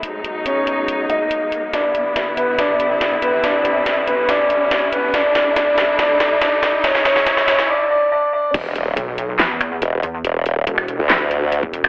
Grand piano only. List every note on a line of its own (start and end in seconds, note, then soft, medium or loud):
0.46 1.01 C#4 medium
0.46 1.01 C#5 medium
1.10 1.65 D#4 medium
1.10 1.65 D#5 medium
1.73 2.29 D4 medium
1.73 2.29 D5 medium
2.37 2.57 B3 medium
2.37 2.57 B4 medium
2.58 3.14 D4 medium
2.58 3.14 D5 medium
3.22 3.42 B3 medium
3.22 3.42 B4 medium
3.44 3.99 D4 medium
3.44 3.99 D5 medium
4.07 4.27 B3 medium
4.07 4.27 B4 medium
4.29 4.84 D4 medium
4.29 4.84 D5 loud
4.92 5.12 B3 medium
4.92 5.12 B4 medium
5.14 5.55 D4 medium
5.14 5.55 D5 medium
5.56 5.97 D4 medium
5.56 5.97 D5 medium
5.99 6.40 D4 medium
5.99 6.40 D5 loud
6.42 6.82 D4 medium
6.42 6.82 D5 loud
6.84 7.04 C#4 medium
6.84 7.04 C#5 loud
7.05 7.25 C#4 medium
7.05 7.25 C#5 loud
7.27 7.46 C#4 medium
7.27 7.46 C#5 loud
7.48 7.68 C#4 medium
7.48 7.68 C#5 loud
7.69 7.89 D4 medium
7.69 7.89 D5 loud
7.90 8.10 D4 medium
7.90 8.10 D5 loud
8.12 8.31 D4 medium
8.12 8.31 D5 loud
8.33 8.53 D4 medium
8.33 8.53 D5 loud